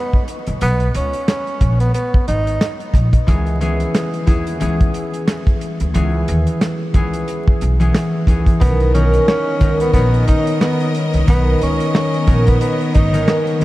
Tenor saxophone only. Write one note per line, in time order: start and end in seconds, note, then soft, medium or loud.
0.00 0.24 B3 medium
0.62 0.92 B3 loud
0.96 1.26 C#4 medium
1.29 1.78 C#4 medium
1.80 1.93 B3 medium
1.94 2.24 B3 medium
2.28 2.77 D#4 medium
8.61 8.91 B3 loud
8.94 9.24 C#4 medium
9.28 9.77 C#4 loud
9.81 9.93 B3 medium
9.93 10.24 B3 medium
10.27 10.57 D#4 medium
10.61 10.91 B3 medium
11.29 11.58 B3 loud
11.63 11.92 C#4 medium
11.96 12.44 C#4 medium
12.47 12.60 B3 medium
12.61 12.91 B3 medium
12.95 13.44 D#4 medium